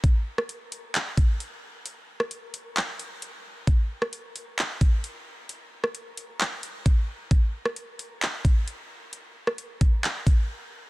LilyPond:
\new DrumStaff \with { instrumentName = "Drums" } \drummode { \time 4/4 \tempo 4 = 132 <hh bd>8. ss16 hh8 hh8 <hc hh>8 <hh bd>8 hh4 | hh8. ss16 hh8 hh8 <hc hh>8 hh8 hh4 | <hh bd>8. ss16 hh8 hh8 <hc hh>8 <hh bd>8 hh4 | hh8. ss16 hh8 hh8 <hc hh>8 hh8 <hh bd>4 |
<hh bd>8. ss16 hh8 hh8 <hc hh>8 <hh bd>8 hh4 | hh8. ss16 hh8 <hh bd>8 <hc hh>8 <hh bd>8 r4 | }